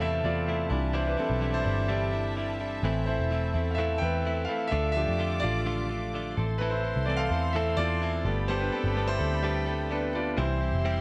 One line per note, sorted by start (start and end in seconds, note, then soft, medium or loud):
0.00 0.21 E2 medium
0.00 0.24 A2 medium
0.00 0.68 C3 soft
0.00 0.24 E3 medium
0.00 0.68 A3 soft
0.00 0.25 A3 medium
0.00 0.68 C4 medium
0.00 0.24 C4 medium
0.00 0.74 E4 medium
0.00 0.23 E4 medium
0.00 0.02 A4 medium
0.00 0.68 A4 medium
0.00 0.24 A4 medium
0.00 0.74 B4 loud
0.00 0.70 C5 medium
0.00 0.74 C5 medium
0.00 0.25 D5 medium
0.00 0.26 E5 loud
0.00 0.74 F5 loud
0.00 4.68 A5 medium
0.24 0.68 E2 medium
0.24 0.47 A3 soft
0.24 0.47 C4 medium
0.24 0.48 E4 medium
0.24 0.92 F4 medium
0.24 0.97 D5 medium
0.47 0.71 E3 medium
0.47 0.72 A3 medium
0.47 0.71 C4 medium
0.47 0.69 E4 medium
0.70 1.15 C2 loud
0.70 1.38 E3 medium
0.70 0.93 G3 medium
0.70 1.18 C4 soft
0.70 0.93 D4 soft
0.70 1.06 D4 medium
0.70 0.93 E4 medium
0.70 2.81 G4 medium
0.70 2.81 D5 medium
0.70 4.68 E5 medium
0.93 1.18 C3 medium
0.93 1.18 E3 medium
0.93 1.18 G3 medium
0.93 1.17 D4 loud
0.93 1.16 E4 medium
0.93 1.00 E4 medium
0.93 1.00 C5 medium
1.07 1.18 D4 medium
1.07 1.18 B4 medium
1.17 1.40 G3 medium
1.17 1.52 C4 medium
1.17 1.41 D4 medium
1.17 1.41 E4 medium
1.17 1.56 A4 medium
1.30 1.63 B1 medium
1.41 1.65 E3 medium
1.41 1.65 G3 medium
1.41 1.64 D4 medium
1.41 1.63 E4 medium
1.54 1.87 E4 medium
1.54 1.90 C5 loud
1.64 2.80 G1 medium
1.64 1.88 G3 soft
1.64 1.88 D4 medium
1.64 1.88 E4 medium
1.88 2.13 C3 medium
1.88 2.13 E3 medium
1.88 2.13 G3 medium
1.88 2.12 D4 medium
1.88 2.11 E4 medium
1.88 2.56 G4 medium
1.88 2.56 D5 medium
2.12 2.35 G3 medium
2.12 2.36 D4 medium
2.12 2.36 E4 medium
2.36 2.60 E3 medium
2.36 2.60 G3 medium
2.36 2.60 D4 medium
2.36 2.59 E4 medium
2.60 2.84 G3 soft
2.60 2.84 D4 medium
2.60 2.84 E4 medium
2.83 3.16 A1 medium
2.83 3.07 A2 medium
2.83 3.50 E3 soft
2.83 3.07 E3 medium
2.83 3.51 A3 medium
2.83 3.08 A3 medium
2.83 4.71 C4 medium
2.83 3.51 C4 medium
2.83 3.07 C4 medium
2.83 3.06 E4 medium
2.83 6.34 A4 medium
3.06 3.30 A3 medium
3.06 3.31 C4 soft
3.06 3.31 E4 medium
3.06 3.69 E4 medium
3.06 3.67 C5 medium
3.19 3.52 E1 medium
3.31 3.54 E3 medium
3.31 3.55 A3 medium
3.31 3.54 C4 medium
3.31 3.53 E4 medium
3.54 3.98 E2 medium
3.54 3.77 A3 soft
3.54 3.78 C4 medium
3.54 3.78 E4 medium
3.71 3.77 F5 medium
3.75 4.02 A2 medium
3.75 4.02 E3 medium
3.75 4.02 A3 medium
3.75 4.00 A4 medium
3.75 4.01 E5 loud
3.79 4.01 C4 medium
3.79 4.00 E4 medium
3.98 4.46 E2 medium
3.98 4.25 E4 medium
3.98 4.46 B4 medium
3.98 4.44 G5 medium
4.02 4.24 A3 soft
4.02 4.25 C4 medium
4.25 4.49 E3 medium
4.25 4.49 A3 medium
4.25 4.48 C4 medium
4.25 4.47 E4 medium
4.45 4.72 E4 medium
4.45 4.71 F5 loud
4.49 4.70 A3 soft
4.49 4.72 C4 soft
4.49 4.71 A4 medium
4.67 4.95 D3 medium
4.67 4.91 E5 loud
4.72 5.05 D2 loud
4.72 4.96 A3 medium
4.72 4.95 D4 medium
4.72 6.36 F4 medium
4.72 4.94 F4 medium
4.72 4.94 A4 medium
4.72 6.36 D5 medium
4.72 6.35 D6 medium
4.92 5.63 F3 medium
4.92 5.63 A3 soft
4.92 5.19 F4 medium
4.92 5.38 E5 loud
4.96 5.18 A3 soft
4.96 5.63 D4 medium
4.96 5.19 D4 medium
4.96 5.40 G4 medium
5.08 5.41 F2 medium
5.18 5.43 D3 medium
5.18 5.43 A3 medium
5.18 5.42 D4 medium
5.18 5.41 F4 medium
5.40 6.33 A1 medium
5.40 5.65 D4 medium
5.40 5.66 F4 medium
5.40 6.33 F4 medium
5.40 6.32 D5 loud
5.45 5.65 A3 soft
5.66 5.90 D3 medium
5.66 5.90 A3 medium
5.66 5.89 D4 medium
5.66 5.88 F4 medium
5.89 6.13 A3 soft
5.89 6.14 D4 medium
5.89 6.13 F4 medium
6.13 6.37 D3 medium
6.13 6.38 A3 medium
6.13 6.38 D4 medium
6.13 6.37 F4 medium
6.35 6.93 A1 loud
6.35 6.60 C4 soft
6.35 6.60 E4 soft
6.35 10.33 A4 medium
6.35 6.61 A4 medium
6.35 8.23 C5 medium
6.35 8.23 C6 medium
6.58 6.84 A2 medium
6.58 6.85 E3 medium
6.58 6.85 C4 medium
6.58 6.71 E4 medium
6.58 6.84 E4 medium
6.58 6.72 B4 loud
6.62 6.83 A4 medium
6.70 7.05 E4 medium
6.70 7.08 C5 medium
6.84 7.07 C4 medium
6.84 7.07 E4 medium
6.84 7.08 A4 medium
6.96 7.29 C2 medium
7.06 7.39 E3 soft
7.06 7.31 E3 medium
7.06 7.39 A3 soft
7.06 7.39 C4 medium
7.06 7.32 C4 medium
7.06 7.31 E4 medium
7.06 7.17 A4 medium
7.06 7.30 A4 medium
7.06 7.19 D5 medium
7.17 7.52 A4 medium
7.17 7.55 F5 loud
7.30 7.75 E2 loud
7.30 7.55 C4 soft
7.30 7.55 E4 medium
7.30 7.55 A4 medium
7.53 7.79 A2 medium
7.53 7.79 E3 medium
7.53 7.79 C4 medium
7.53 7.78 E4 medium
7.53 7.77 A4 medium
7.53 7.76 E5 medium
7.77 8.22 E2 medium
7.77 8.01 C4 soft
7.77 8.01 E4 medium
7.77 8.45 F4 medium
7.77 8.02 A4 medium
7.77 8.45 D5 loud
8.01 8.26 E3 medium
8.01 8.26 C4 medium
8.01 8.26 E4 medium
8.01 8.24 A4 medium
8.25 8.69 G1 loud
8.25 8.57 G3 medium
8.25 8.57 A3 medium
8.25 8.57 B3 medium
8.25 8.48 B3 soft
8.25 8.49 D4 soft
8.25 8.49 A4 medium
8.25 10.36 D5 medium
8.25 10.36 G5 medium
8.25 10.36 B5 medium
8.48 8.73 G3 medium
8.48 8.73 B3 medium
8.48 8.73 D4 loud
8.48 8.61 G4 medium
8.48 8.72 A4 loud
8.48 8.61 C5 loud
8.60 8.73 D4 medium
8.60 8.72 B4 medium
8.72 8.96 B3 medium
8.72 9.06 C4 medium
8.72 8.96 D4 medium
8.72 9.09 A4 medium
8.72 8.97 A4 medium
8.84 9.17 G1 medium
8.96 9.20 G3 medium
8.96 9.18 G3 soft
8.96 9.18 A3 soft
8.96 9.19 B3 medium
8.96 9.18 B3 medium
8.96 9.19 D4 medium
8.96 9.18 A4 medium
9.07 9.41 E4 medium
9.07 9.44 C5 loud
9.19 10.34 D2 medium
9.19 9.42 B3 soft
9.19 9.43 D4 medium
9.19 9.43 A4 medium
9.43 9.67 G3 medium
9.43 9.67 B3 loud
9.43 9.66 D4 medium
9.43 10.10 G4 medium
9.43 9.65 A4 medium
9.43 10.10 D5 medium
9.66 9.90 B3 medium
9.66 9.90 D4 medium
9.66 9.90 A4 medium
9.90 10.14 G3 medium
9.90 10.14 B3 medium
9.90 10.13 D4 medium
9.90 9.97 D4 medium
9.90 10.12 A4 medium
9.90 9.96 B4 medium
10.13 10.37 B3 soft
10.13 10.37 D4 medium
10.13 10.21 F4 medium
10.13 10.37 A4 medium
10.13 10.20 D5 medium
10.37 10.71 C2 loud
10.37 10.61 C3 loud
10.37 11.01 E3 medium
10.37 10.61 G3 medium
10.37 11.01 G3 soft
10.37 10.61 C4 loud
10.37 11.01 C4 medium
10.37 10.60 E4 loud
10.37 11.01 E4 medium
10.37 10.59 G4 loud
10.37 11.01 G4 medium
10.37 11.01 C5 loud
10.37 11.01 C5 medium
10.37 11.01 E5 medium
10.37 11.01 C6 medium
10.61 10.84 C4 medium
10.61 10.84 E4 medium
10.61 10.84 G4 medium
10.73 11.01 F1 medium
10.84 11.01 C3 medium
10.84 11.01 G3 medium
10.84 11.01 C4 medium
10.84 11.01 E4 medium
10.84 11.01 G4 loud